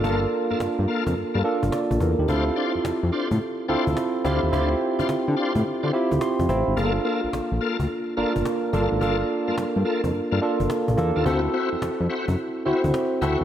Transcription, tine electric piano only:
Already playing: A#3 D4 F4 A4
0.04 A#3 D4 F4 A4
1.44 A#3 D4 F4 A4
1.73 D5
2.01 A#4
2.19 G4
2.28 C4 E4 F4 A4
3.68 C4 E4 F4 A4
4.24 C4 E4 F4 G4
4.52 C4 E4 F4 G4
5.93 C4 E4 F4 G4
6.21 C6
6.49 C4 E4 F4 C5 G5
6.77 A#3 D4 F4 G#4
6.85 A4
8.17 A#3 D4 F4 A#4
8.73 A#3 D4 F4 A4
9.01 A#3 D4 F4 A4
10.41 A#3 D4 F4 A4
10.97 A#3 D4 F4 A4
11.25 C4 E4 F#4 A4
12.65 C4 E4 F#4 C5
13.21 C4 E4 F#4 A4

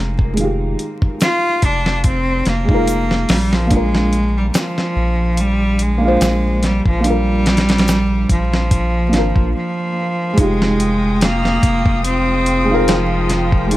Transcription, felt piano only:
Already playing: G#3 D#4 F4 A#4
0.33 D#3 G#3
0.40 F4 G4
2.64 G#3 D#4
2.71 F4 A#4
3.67 A#3 D4
3.74 F4 A#4
5.98 A#3 D4
6.05 F4 C5
7.00 A#3 D4
7.07 F4 A#4
9.09 A#3 D4
9.15 F4 A#4
10.33 G#3 D#4
10.40 F4 G4
12.64 G#3 D#4
12.71 F4 A#4
13.67 G#3 D#4
13.73 F4

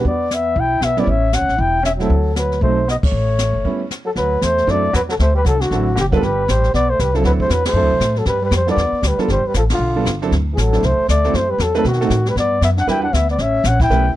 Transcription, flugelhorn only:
0.07 D5
0.34 E5
0.60 G5
0.84 E5
0.99 D5
1.09 E5
1.34 F#5
1.60 G5
1.86 E5
2.01 A4
2.38 B4
2.63 C5
2.90 D#5
3.05 C#5
4.06 A4
4.17 B4
4.43 C5
4.70 D5
4.96 B4
5.11 A4
5.21 C5
5.36 B4
5.47 A4
5.61 F#4
5.99 G4
6.14 A4
6.24 B4
6.50 C5
6.75 D5
6.90 C5
7.01 B4
7.16 A4
7.26 B4
7.41 C5
7.52 B4
7.67 C5
8.18 A4
8.28 B4
8.45 B4
8.56 C5
8.70 D5
9.07 B4
9.22 A4
9.32 C5
9.47 B4
9.58 A4
9.74 F4
10.54 G#4
10.60 A4
10.85 C5
11.10 D5
11.36 C5
11.51 B4
11.62 A4
11.78 A4
11.87 F#4
12.29 B4
12.39 D5
12.64 E5
12.79 F#5
12.90 G5
13.03 F#5
13.14 E5
13.31 D5
13.42 E5
13.67 F#5
13.83 G5

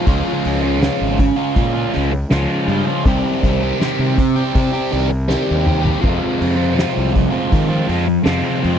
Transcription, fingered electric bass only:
0.07 C#2
0.46 C#2
1.01 G#1
1.57 A#2
1.96 C#2
2.32 C#2
2.68 G2
3.06 C2
3.43 C2
3.99 C3
4.55 C3
4.93 C2
5.51 D#2
6.04 F2
6.41 F2
6.97 C2
7.53 D#3
7.89 F2
8.26 F2
8.65 F2

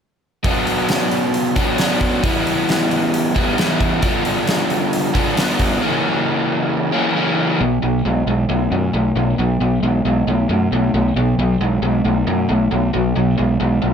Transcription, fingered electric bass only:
7.61 B1
7.83 B1
8.06 B1
8.27 B1
8.49 B1
8.71 F#2
8.94 B1
9.16 B1
9.39 B1
9.61 B1
9.83 B1
10.05 B1
10.27 B1
10.49 F#2
10.72 B1
10.94 B1
11.16 B1
11.38 B1
11.61 B1
11.82 B1
12.05 B1
12.27 F#2
12.50 B1
12.72 B1
12.95 B1
13.17 B1
13.40 B1
13.61 B1
13.84 B1

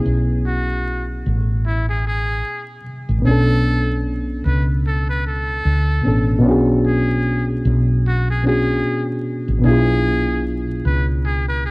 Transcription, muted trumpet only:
0.47 F#4
1.67 E4
1.89 G#4
2.07 G#4
3.27 A4
4.46 B4
4.87 A4
5.10 B4
5.27 A4
6.87 G#4
8.08 F#4
8.30 G#4
8.47 G#4
9.66 G#4
10.86 B4
11.26 G#4
11.48 B4
11.66 G#4

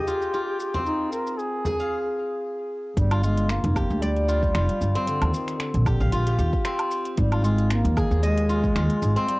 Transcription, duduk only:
Already playing: G4
0.86 D#4
1.12 A#4
1.38 G#4
2.96 G3
3.23 G#3
3.50 A#3
4.03 G3
5.07 D3
5.34 D#3
5.60 D3
7.18 G3
7.45 G#3
7.71 A#3
8.24 G#3
9.28 G3

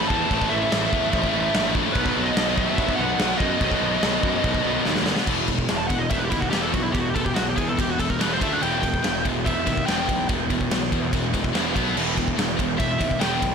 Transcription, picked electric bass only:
0.10 E2
0.31 A1
0.51 A1
0.72 A1
0.93 E2
1.14 A1
1.34 A1
1.54 A#1
1.95 B1
2.16 B1
2.37 B1
2.78 B1
2.99 B1
3.20 B1
3.40 F#2
3.61 B1
3.82 B1
4.04 B1
4.23 F#2
4.44 B1
4.66 B1
4.87 D#2
5.27 E1
5.70 E1
5.90 E1
6.11 E1
6.32 D#2
6.53 E1
6.74 B1
6.95 E1
7.16 E1
7.37 B1
7.57 E2
7.79 E1
7.99 E1
8.21 E1
8.41 D2
8.63 E1
9.04 E1
9.26 E1
9.46 E1
9.67 D#2
9.88 E1
10.08 B1
10.29 E1
10.50 E1
10.70 B1
10.92 E2
11.13 E1
11.34 E1
11.54 E1
11.76 B1
11.96 E1
12.38 E1
12.59 E1
12.80 E1
13.00 D#2
13.21 E1
13.43 B1

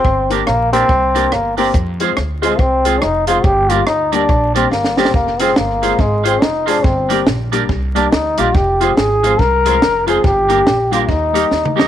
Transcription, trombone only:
Already playing: C4
0.47 A#3
0.73 C4
1.32 A#3
1.57 C4
2.43 G#3
2.60 C4
3.02 D#4
3.27 F4
3.44 G4
3.70 F4
3.87 D#4
4.13 D4
4.55 C4
4.71 A#3
4.97 C4
5.15 A#3
5.41 C4
5.57 A#3
6.00 G#3
6.27 C4
6.42 D#4
6.68 D4
6.84 C4
7.96 D4
8.12 D#4
8.39 F4
8.56 G4
8.97 G#4
9.40 A#4
10.08 G#4
10.25 G4
10.92 F4
11.02 F4
11.09 D#4

